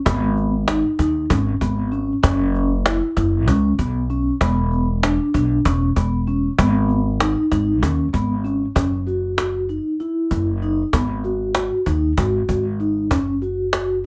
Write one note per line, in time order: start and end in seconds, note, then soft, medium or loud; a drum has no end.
0.06 0.81 G#1 medium
0.06 0.52 B3 loud
0.06 cajon bass loud
0.37 cajon slap soft
0.68 0.91 D#4 medium
0.68 cajon slap loud
0.99 1.24 D#2 medium
0.99 1.22 D#4 medium
0.99 cajon bass medium
1.30 1.55 G#1 loud
1.30 1.53 C#4 medium
1.30 cajon bass loud
1.61 2.11 G#1 medium
1.61 1.84 B3 medium
1.61 cajon bass medium
1.92 2.15 C#4 medium
1.92 cajon slap soft
2.23 2.99 F#1 loud
2.23 2.69 C#4 loud
2.23 cajon bass loud
2.55 cajon slap soft
2.85 3.08 E4 medium
2.85 cajon slap loud
3.17 3.48 F#1 medium
3.17 3.40 E4 medium
3.17 cajon bass medium
3.17 cajon slap soft
3.47 3.73 C#2 medium
3.47 3.71 C#4 medium
3.47 cajon bass loud
3.47 cajon slap soft
3.78 4.29 B1 medium
3.78 4.01 B3 medium
3.78 cajon bass medium
4.10 4.33 C#4 medium
4.10 cajon slap soft
4.41 5.16 E1 loud
4.41 4.87 B3 loud
4.41 cajon bass loud
4.72 cajon slap soft
5.03 5.26 D4 medium
5.03 cajon slap loud
5.34 5.59 B1 medium
5.34 5.57 D4 medium
5.34 cajon bass medium
5.34 cajon slap soft
5.65 5.90 E1 medium
5.65 5.88 C#4 medium
5.65 cajon bass loud
5.96 6.46 E1 medium
5.96 6.19 B3 medium
5.96 cajon bass medium
6.27 6.50 C#4 medium
6.27 cajon slap soft
6.58 7.34 G#1 loud
6.58 7.04 B3 loud
6.58 cajon bass loud
6.90 cajon slap soft
7.20 7.43 D#4 medium
7.20 cajon slap loud
7.52 7.83 G#1 medium
7.52 7.74 D#4 medium
7.52 cajon bass medium
7.52 cajon slap soft
7.82 8.08 D#2 medium
7.82 8.05 C#4 medium
7.82 cajon bass medium
8.13 8.64 G#1 medium
8.13 8.36 B3 medium
8.13 cajon bass medium
8.45 8.67 C#4 medium
8.45 cajon slap soft
8.75 9.76 F#1 medium
8.75 8.98 C#4 medium
8.75 cajon bass loud
9.07 9.30 F#4 medium
9.07 cajon slap soft
9.38 9.61 F#4 medium
9.38 cajon slap medium
9.69 9.92 D#4 medium
9.69 cajon slap soft
10.00 10.46 E4 medium
10.00 cajon slap soft
10.30 10.81 F#1 medium
10.30 cajon bass medium
10.30 cajon slap soft
10.62 10.85 D#4 medium
10.62 cajon slap soft
10.93 11.69 G#1 medium
10.93 11.16 B3 medium
10.93 cajon bass loud
11.24 11.47 F#4 medium
11.24 cajon slap soft
11.55 11.78 F#4 medium
11.55 cajon slap loud
11.86 12.12 D#2 medium
11.86 12.09 D#4 medium
11.86 cajon bass medium
12.17 12.43 G#1 medium
12.17 12.64 F#4 medium
12.17 cajon bass medium
12.49 13.11 G#1 medium
12.49 cajon bass medium
12.80 13.03 D#4 medium
12.80 cajon slap soft
13.11 14.06 F#1 medium
13.11 13.34 C#4 medium
13.11 cajon bass loud
13.42 13.65 F#4 medium
13.42 cajon slap soft
13.73 13.96 F#4 medium
13.73 cajon slap loud